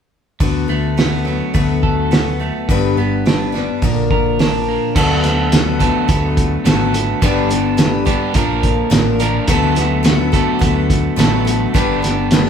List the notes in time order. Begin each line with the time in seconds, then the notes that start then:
0.40 D2 D3 F#3 B3 F#4 A4, kick, open hi-hat
0.68 D2 A3 B3 F#4 A4
0.97 F#3 B3 F#4 A4, snare, open hi-hat
1.25 F#3 B3 F#4 A4
1.54 D2 D3 F#3 A3 B3 F#4 A4, kick, open hi-hat
1.83 A4, kick
2.11 F#3 B3 F#4 A4, snare, open hi-hat
2.40 A3 B3 F#4 A4
2.69 G1 G2 D3 G3 B3 D4 B4, kick, open hi-hat
2.97 G1 G3 B3 D4 B4
3.25 G3 B3 D4 B4, snare, open hi-hat
3.52 G3 B3 D4 B4, snare
3.82 A#1 A#2 D3 F3 A#3 D4 A#4, kick, open hi-hat
4.11 A#4, kick
4.39 F3 A#3 D4 A#4, snare, open hi-hat
4.68 A#3
4.96 D2 D3 F#3 A3 B3 F#4 A4, kick, crash
5.24 F#4 A4, snare, closed hi-hat
5.28 B3
5.52 D3 F#3 B3 F#4 A4, snare, closed hi-hat
5.80 D3 F#3 A3 B3 F#4 A4, kick, closed hi-hat
6.08 D2 F#3 B3 F#4 A4, kick, closed hi-hat
6.37 kick, closed hi-hat
6.65 G#1 D3 F#3 A3 B3 F#4 A4, snare, closed hi-hat
6.94 B3 F#4 A4, closed hi-hat
7.22 G1 G2 D3 G3 B3 D4 G4 B4, kick, closed hi-hat
7.50 G3 B3 D4 B4, closed hi-hat
7.77 G2 D3 G3 B3 D4 B4, snare, closed hi-hat
8.05 G2 D3 G3 B3 D4 G4 B4, kick, closed hi-hat
8.34 A#1 A#2 D3 F3 A#3 D4 A#4, kick, closed hi-hat
8.63 kick, closed hi-hat
8.90 A1 A#2 D3 F3 A#3 D4 A#4, snare, closed hi-hat
9.19 A#2 D3 F3 A#3 D4 A#4, closed hi-hat
9.47 D2 D3 F#3 A3 B3 F#4 A4, kick, closed hi-hat
9.75 B3 F#4 A4, snare, closed hi-hat
10.03 D3 F#3 B3 F#4 A4, snare, closed hi-hat
10.32 D3 F#3 A3 B3 F#4 A4, kick, closed hi-hat
10.59 D2 F#3 B3 F#4 A4, kick, closed hi-hat
10.90 kick, closed hi-hat
11.16 A1 D3 F#3 A3 B3 F#4 A4, snare, closed hi-hat
11.45 B3 F#4 A4, closed hi-hat
11.74 G1 G2 D3 G3 B3 D4 G4 B4, kick, closed hi-hat
12.02 G3 B3 D4 B4, snare, closed hi-hat
12.31 G2 D3 G3 B3 D4 B4, snare, closed hi-hat
12.46 snare